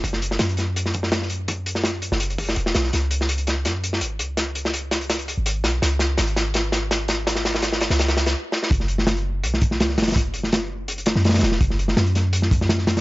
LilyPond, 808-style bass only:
\new Staff \with { instrumentName = "808-style bass" } { \clef bass \time 4/4 \key cis \minor \tempo 4 = 166 fis,,4 fis,2.~ | fis,4.~ fis,16 fis,,4~ fis,,16 e,,8 b,,8 | cis,2 fis,4 gis,,8 cis,8~ | cis,2~ cis,8. gis,,8. b,,8 |
cis,4 gis,,2.~ | gis,,4.~ gis,,16 cis,4~ cis,16 r4 | fis,,2 b,,4 cis,8 fis,,8~ | fis,,2~ fis,,8. fis,8. e,,8 |
fis,,4 fis,2. | }